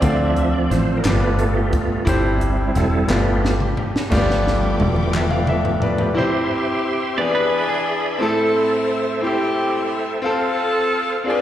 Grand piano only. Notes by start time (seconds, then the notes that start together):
0.01 D3 C4 D4 F4 A4 D5
1.02 G2 B3 D4 F4 G4
1.06 D5
2.05 G2 E4 G4
2.09 C5
3.08 G2 B3 D4 F4 G4 D5
4.10 G2 A3 D4 F4 G4 D5
4.17 B3
5.15 E5 G5
5.31 D5 F5
5.49 E5
5.82 B4 D5
6.00 G4 B4
6.15 C3 E4 G4 C5
7.17 E3 B3 D4 E4 G4 D5
7.27 G#4
8.18 A2 C4 E4 A4
9.20 C4 E4 G4
10.22 C4 F4 A4
11.24 C4 D4 F4 G#4 D5